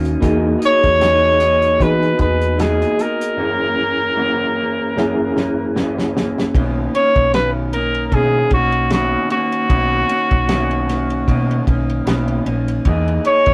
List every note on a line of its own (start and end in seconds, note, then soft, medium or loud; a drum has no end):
0.00 0.14 D#2 medium
0.00 0.20 D#3 medium
0.00 0.13 A#3 medium
0.00 0.20 A#3 medium
0.00 0.13 C#4 medium
0.00 0.21 C#4 medium
0.00 0.13 D#4 medium
0.00 0.14 F#4 loud
0.05 closed hi-hat medium
0.20 0.54 E2 loud
0.20 0.61 E3 medium
0.20 1.70 A#3 medium
0.20 0.61 A#3 loud
0.20 0.59 D#4 medium
0.20 1.70 D#4 medium
0.20 1.71 F#4 medium
0.20 0.58 G#4 loud
0.20 1.71 G#4 medium
0.20 kick loud
0.20 closed hi-hat medium
0.59 0.99 A#3 soft
0.59 0.99 D#4 medium
0.59 1.00 G#4 medium
0.59 closed hi-hat medium
0.65 1.84 C#5 loud
0.84 1.76 E2 loud
0.84 kick loud
0.84 closed hi-hat soft
0.99 1.40 E3 medium
0.99 1.40 A#3 medium
0.99 1.39 D#4 medium
0.99 1.37 G#4 medium
0.99 snare loud
0.99 closed hi-hat medium
1.38 1.80 A#3 soft
1.38 1.79 D#4 soft
1.38 1.79 G#4 medium
1.38 closed hi-hat medium
1.62 closed hi-hat soft
1.78 2.18 E3 medium
1.78 2.12 E3 loud
1.78 3.28 B3 medium
1.78 2.18 D#4 medium
1.78 3.29 D#4 medium
1.78 3.29 F#4 medium
1.78 2.16 G#4 medium
1.78 2.20 B4 loud
1.78 kick loud
1.78 closed hi-hat medium
1.82 3.30 G#4 medium
2.03 closed hi-hat soft
2.17 2.83 E2 loud
2.17 2.57 D#4 soft
2.17 2.58 G#4 medium
2.17 2.62 B4 medium
2.17 kick loud
2.17 closed hi-hat medium
2.42 closed hi-hat medium
2.57 2.97 E3 medium
2.57 2.98 A#3 medium
2.57 2.98 D#4 medium
2.57 2.96 G#4 medium
2.57 3.03 G#4 medium
2.57 snare loud
2.57 closed hi-hat medium
2.82 closed hi-hat soft
2.98 3.37 A#3 soft
2.98 3.38 D#4 soft
2.98 3.37 G#4 medium
2.98 5.76 A#4 loud
2.98 closed hi-hat medium
3.21 closed hi-hat medium
3.37 4.86 F#2 medium
3.37 3.77 F#2 medium
3.37 3.77 E3 medium
3.37 4.86 A#3 medium
3.37 3.76 A#3 medium
3.37 4.87 C#4 medium
3.37 3.74 C#4 medium
3.37 4.87 E4 medium
3.37 4.87 G#4 medium
3.76 4.15 E3 soft
3.76 4.15 A#3 medium
3.76 4.16 C#4 medium
4.15 4.55 F#2 medium
4.15 4.56 E3 medium
4.15 4.56 A#3 medium
4.15 4.54 C#4 medium
4.55 4.95 E3 soft
4.55 4.96 A#3 medium
4.55 4.95 C#4 medium
4.95 5.35 F#2 medium
4.95 6.45 F#2 medium
4.95 5.35 E3 medium
4.95 6.45 A#3 medium
4.95 5.35 A#3 medium
4.95 6.45 C#4 medium
4.95 5.34 C#4 medium
4.95 6.45 E4 medium
4.95 snare medium
4.99 6.46 G#4 loud
5.35 5.74 E3 medium
5.35 5.75 A#3 medium
5.35 5.75 C#4 medium
5.35 snare medium
5.74 6.14 F#2 medium
5.74 6.15 E3 medium
5.74 6.14 A#3 loud
5.74 6.13 C#4 loud
5.74 snare medium
5.99 snare medium
6.14 6.54 E3 medium
6.14 6.54 A#3 medium
6.14 6.54 C#4 medium
6.14 snare loud
6.38 snare medium
6.54 6.86 B1 loud
6.54 6.93 B2 medium
6.54 6.94 D#3 medium
6.54 6.94 A#3 medium
6.54 6.92 C#4 loud
6.54 kick loud
6.54 ride medium
6.94 7.32 D#3 medium
6.94 7.33 A#3 soft
6.94 7.33 C#4 medium
6.94 7.31 C#5 loud
6.94 ride medium
7.16 8.08 B1 loud
7.16 kick medium
7.16 ride soft
7.33 7.72 B2 medium
7.33 7.72 D#3 medium
7.33 7.72 C#4 medium
7.33 7.50 B4 medium
7.33 snare loud
7.33 ride medium
7.73 8.12 D#3 soft
7.73 8.13 A#3 medium
7.73 8.12 C#4 medium
7.73 8.07 A#4 medium
7.73 ride medium
7.95 ride soft
8.07 8.15 A#4 medium
8.12 8.43 B2 loud
8.12 8.52 B2 medium
8.12 8.52 D#3 medium
8.12 8.51 A#3 medium
8.12 8.50 C#4 medium
8.12 8.52 G#4 loud
8.12 kick loud
8.12 ride medium
8.51 9.14 B1 loud
8.51 8.90 D#3 soft
8.51 8.91 A#3 medium
8.51 8.90 C#4 medium
8.51 8.89 F#4 medium
8.51 kick loud
8.51 ride medium
8.72 ride soft
8.90 9.30 B2 medium
8.90 9.30 D#3 medium
8.90 9.31 A#3 medium
8.90 9.29 C#4 medium
8.90 9.29 F#4 medium
8.90 snare loud
8.90 ride medium
9.30 9.68 D#3 soft
9.30 9.69 A#3 medium
9.30 9.69 C#4 medium
9.30 11.64 F#4 loud
9.30 ride medium
9.52 ride soft
9.69 10.01 B1 loud
9.69 10.09 B2 medium
9.69 10.09 D#3 medium
9.69 10.09 A#3 medium
9.69 10.07 C#4 medium
9.69 kick loud
9.69 ride medium
10.08 10.47 D#3 soft
10.08 10.47 A#3 soft
10.08 10.47 C#4 medium
10.08 ride medium
10.31 11.24 B1 loud
10.31 kick loud
10.31 ride soft
10.47 10.87 B2 medium
10.47 10.88 D#3 medium
10.47 10.87 A#3 medium
10.47 10.86 C#4 loud
10.47 snare loud
10.47 ride medium
10.71 ride soft
10.87 11.27 D#3 medium
10.87 11.28 A#3 medium
10.87 11.27 C#4 medium
10.87 snare soft
10.87 ride medium
11.10 ride soft
11.27 11.67 B2 medium
11.27 11.59 B2 loud
11.27 11.67 D#3 medium
11.27 11.67 A#3 medium
11.27 11.66 C#4 medium
11.27 kick loud
11.27 ride medium
11.51 ride soft
11.67 11.99 B1 loud
11.67 12.05 D#3 soft
11.67 12.05 A#3 medium
11.67 12.06 C#4 medium
11.67 kick loud
11.67 ride medium
11.90 ride soft
12.05 12.38 B1 medium
12.05 12.45 B2 loud
12.05 12.46 D#3 medium
12.05 12.46 A#3 loud
12.05 12.44 C#4 loud
12.05 snare loud
12.05 ride medium
12.28 ride soft
12.45 12.77 A#1 medium
12.45 12.85 D#3 soft
12.45 12.85 A#3 medium
12.45 12.85 C#4 medium
12.45 ride medium
12.68 ride soft
12.85 13.17 E2 loud
12.85 13.25 E3 medium
12.85 13.25 A#3 medium
12.85 13.25 D#4 medium
12.85 13.24 G#4 medium
12.85 kick loud
12.85 ride medium
13.08 ride soft
13.25 13.54 A#3 soft
13.25 13.54 D#4 medium
13.25 13.54 G#4 medium
13.25 13.54 C#5 loud
13.25 ride medium
13.46 13.54 E2 loud
13.46 kick loud
13.46 ride soft